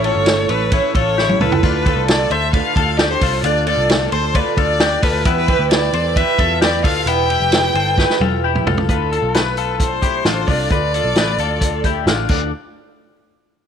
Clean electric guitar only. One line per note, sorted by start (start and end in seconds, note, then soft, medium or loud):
0.05 0.48 F4 medium
0.05 0.47 A4 medium
0.50 0.73 A4 medium
0.50 0.73 C#5 medium
0.73 0.96 E4 medium
0.73 0.95 B4 medium
0.95 1.18 F4 medium
0.95 1.18 A4 medium
1.18 1.41 E4 medium
1.18 1.41 G4 medium
1.41 1.62 F4 medium
1.41 1.63 A4 medium
1.64 1.86 D4 medium
1.64 1.86 F4 loud
1.86 2.29 F4 medium
1.86 2.29 A4 medium
2.32 2.54 A4 medium
2.32 2.54 C5 medium
2.54 2.77 F4 medium
2.54 2.77 B4 medium
2.77 2.99 F4 medium
2.77 2.99 A4 loud
2.99 3.22 D4 medium
2.99 3.22 G4 medium
3.23 3.43 F4 medium
3.23 3.45 A4 medium
3.45 3.68 D4 medium
3.45 3.67 F4 loud
3.68 4.11 F4 medium
3.68 4.10 A4 medium
4.13 4.36 A4 medium
4.13 4.35 C5 medium
4.35 4.58 F4 medium
4.35 4.58 B4 medium
4.58 4.81 F4 medium
4.58 4.80 A4 medium
4.81 5.04 D4 medium
4.81 5.03 G4 loud
5.03 5.26 F4 medium
5.03 5.26 A4 medium
5.26 5.48 B3 medium
5.26 5.48 E4 loud
5.49 5.92 E4 medium
5.49 5.91 G4 medium
5.94 6.17 A4 medium
5.94 6.16 C5 medium
6.17 6.39 G4 medium
6.17 6.39 B4 medium
6.40 6.63 F4 medium
6.40 6.61 A4 medium
6.61 6.85 E4 medium
6.61 6.84 G4 medium
6.84 7.08 F4 medium
6.84 7.07 A4 medium
7.08 7.29 B3 medium
7.08 7.30 E4 loud
7.30 7.73 E4 medium
7.30 7.73 G4 medium
7.76 7.99 A4 medium
7.76 7.98 C5 medium
7.99 8.21 G4 medium
7.99 8.21 B4 medium
8.21 8.44 F4 medium
8.21 8.44 A4 medium
8.44 8.67 E4 medium
8.44 8.66 G4 medium
8.67 8.89 F4 medium
8.67 8.89 A4 medium
8.89 9.12 F4 medium
8.89 9.12 B4 medium
9.12 9.35 F4 medium
9.12 9.34 A4 medium
9.35 9.57 F4 medium
9.35 9.57 B4 medium
9.58 10.01 F4 medium
9.58 10.00 A4 medium
10.03 10.26 E4 medium
10.03 10.25 G4 medium
10.26 10.48 D4 medium
10.26 10.47 F4 loud
10.49 10.72 D4 medium
10.49 10.71 F4 medium
10.72 10.94 F4 medium
10.72 10.94 B4 medium
10.94 11.17 F4 medium
10.94 11.17 A4 medium
11.18 11.39 F4 medium
11.18 11.39 B4 medium
11.40 11.83 F4 medium
11.40 11.82 A4 medium
11.85 12.08 E4 medium
11.85 12.08 G4 medium
12.08 12.29 D4 medium
12.08 12.30 F4 medium
12.30 12.51 D4 medium